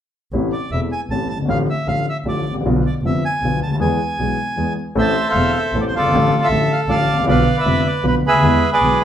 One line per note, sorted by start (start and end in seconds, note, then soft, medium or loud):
0.33 0.50 A1 medium
0.33 0.50 A1 soft
0.33 0.50 A2 soft
0.33 0.50 C3 soft
0.33 0.50 E3 soft
0.33 0.51 A3 soft
0.33 0.50 E4 soft
0.53 0.71 D5 medium
0.72 0.88 E1 soft
0.72 0.89 E1 soft
0.72 0.89 E2 soft
0.72 0.89 C3 soft
0.72 0.89 E3 soft
0.72 0.89 A3 soft
0.72 0.89 E4 soft
0.72 0.81 E5 medium
0.92 1.01 G#5 medium
1.10 1.27 A1 soft
1.10 1.28 A1 soft
1.10 1.28 A2 soft
1.10 1.27 C3 soft
1.10 1.28 E3 soft
1.10 1.28 A3 soft
1.10 1.28 E4 soft
1.10 1.28 A5 medium
1.29 1.47 G1 soft
1.29 1.39 A5 medium
1.36 1.41 F#1 soft
1.41 1.45 G1 soft
1.45 1.50 G#1 soft
1.45 1.65 A1 medium
1.45 1.66 A2 medium
1.45 1.65 D3 soft
1.45 1.65 F3 soft
1.45 1.65 A3 soft
1.45 1.65 F4 soft
1.50 1.58 F5 medium
1.70 1.87 E5 medium
1.86 2.04 A1 soft
1.86 2.04 A2 soft
1.86 2.04 D3 soft
1.86 2.04 F3 soft
1.86 2.04 A3 soft
1.86 2.04 F4 soft
1.86 2.06 F5 medium
2.09 2.17 E5 medium
2.25 2.42 A1 soft
2.25 2.43 A2 soft
2.25 2.43 D3 soft
2.25 2.43 F3 soft
2.25 2.42 A3 soft
2.25 2.43 F4 soft
2.25 2.54 D5 medium
2.44 2.62 A1 soft
2.50 2.55 G#1 soft
2.55 2.60 A1 soft
2.61 2.65 A#1 soft
2.61 2.80 B1 medium
2.65 2.81 B1 medium
2.65 2.81 B2 medium
2.65 2.82 D3 soft
2.65 2.82 F3 soft
2.65 2.81 B3 soft
2.65 2.82 F4 medium
2.86 2.95 D5 medium
3.02 3.19 F1 soft
3.02 3.21 F1 soft
3.02 3.21 F2 soft
3.02 3.20 D3 soft
3.02 3.21 F3 soft
3.02 3.21 B3 soft
3.02 3.21 F4 soft
3.02 3.25 E5 medium
3.25 3.60 G#5 medium
3.41 3.58 B1 soft
3.41 3.59 B1 soft
3.41 3.59 D3 soft
3.41 3.60 F3 soft
3.45 3.60 B2 soft
3.45 3.60 B3 soft
3.45 3.60 F4 soft
3.61 3.78 D2 soft
3.61 3.71 A5 medium
3.66 3.71 C#2 soft
3.72 3.76 D2 soft
3.72 3.80 D#2 soft
3.72 3.76 A5 medium
3.79 3.96 E2 medium
3.79 3.96 E3 medium
3.79 3.96 G#3 soft
3.79 3.97 B3 soft
3.79 3.96 G#4 medium
3.79 4.73 G#5 medium
4.18 4.35 B1 soft
4.18 4.36 B1 soft
4.18 4.35 B2 soft
4.18 4.35 E3 soft
4.18 4.35 G#3 soft
4.18 4.36 B3 soft
4.18 4.36 G#4 soft
4.56 4.74 E2 soft
4.56 4.74 E3 soft
4.56 4.74 G#3 soft
4.56 4.74 B3 soft
4.56 4.74 G#4 soft
4.95 5.12 A1 medium
4.95 5.13 A1 medium
4.95 5.12 A2 medium
4.95 5.12 E3 medium
4.95 5.12 A3 soft
4.95 5.12 C4 soft
4.95 5.12 A4 medium
4.95 5.28 C5 soft
4.95 5.51 E5 soft
5.01 5.28 A5 medium
5.29 5.81 A4 soft
5.29 5.78 C5 soft
5.29 5.58 F5 medium
5.34 5.51 E1 soft
5.34 5.52 E1 soft
5.34 5.51 E2 soft
5.34 5.51 E3 soft
5.34 5.51 A3 soft
5.34 5.52 C4 soft
5.34 5.52 A4 soft
5.58 5.74 E5 medium
5.73 5.90 A1 soft
5.73 5.90 A2 soft
5.73 5.90 E3 soft
5.73 5.90 A3 soft
5.73 5.91 C4 soft
5.73 5.91 A4 soft
5.81 5.85 D5 soft
5.87 5.95 C5 medium
5.92 6.11 G1 soft
5.92 6.48 F4 soft
5.97 6.03 F#1 soft
5.97 6.41 A4 soft
5.97 6.45 D5 medium
6.05 6.09 G1 soft
6.05 6.13 G#1 medium
6.11 6.28 A1 medium
6.11 6.30 A2 medium
6.11 6.30 D3 medium
6.11 6.30 F3 medium
6.11 6.30 A3 medium
6.15 6.30 A1 medium
6.15 6.30 F4 medium
6.42 6.95 A4 medium
6.42 6.72 E5 medium
6.49 6.66 A1 soft
6.49 6.68 A2 soft
6.49 6.68 D3 soft
6.49 6.68 F3 soft
6.49 6.67 A3 soft
6.49 6.67 F4 soft
6.53 6.68 A1 soft
6.73 6.81 F5 medium
6.87 7.04 A1 medium
6.87 7.05 A1 soft
6.87 7.05 A2 soft
6.87 7.05 D3 soft
6.87 7.05 F3 soft
6.87 7.05 A3 soft
6.87 7.05 F4 soft
6.87 7.25 D5 medium
6.87 7.25 F5 medium
6.92 7.17 A5 medium
7.07 7.26 A1 soft
7.13 7.18 G#1 soft
7.19 7.23 A1 soft
7.24 7.28 A#1 medium
7.24 7.43 B1 medium
7.24 7.43 B2 medium
7.24 7.43 D3 medium
7.24 7.43 F3 medium
7.24 7.43 B3 medium
7.24 7.43 F4 medium
7.29 7.56 B4 soft
7.29 7.81 D5 medium
7.29 7.58 F5 medium
7.58 8.06 B4 medium
7.58 7.87 E5 medium
7.65 7.81 F1 soft
7.65 7.82 F1 soft
7.65 7.82 F2 soft
7.65 7.82 D3 soft
7.65 7.82 F3 soft
7.65 7.82 B3 soft
7.65 7.82 F4 soft
7.87 8.04 D5 medium
8.03 8.20 B1 soft
8.03 8.20 B2 soft
8.03 8.20 D3 soft
8.03 8.20 F3 soft
8.03 8.20 B3 soft
8.03 8.20 F4 soft
8.07 8.15 B4 medium
8.22 8.41 D2 soft
8.26 8.33 C#2 soft
8.26 8.71 G#4 medium
8.26 8.70 B4 medium
8.26 8.70 E5 medium
8.35 8.38 D2 soft
8.39 8.43 D#2 medium
8.39 8.58 E2 medium
8.44 8.59 E2 medium
8.44 8.59 E3 medium
8.44 8.59 G#3 medium
8.44 8.60 B3 soft
8.44 8.60 G#4 medium
8.72 9.04 G#4 soft
8.72 9.04 B4 soft
8.72 8.99 D5 medium
8.79 8.96 B1 soft
8.79 8.98 B2 soft
8.79 8.98 E3 soft
8.84 8.98 B1 soft
8.84 8.98 G#3 soft
8.84 8.98 B3 soft
8.84 8.99 G#4 soft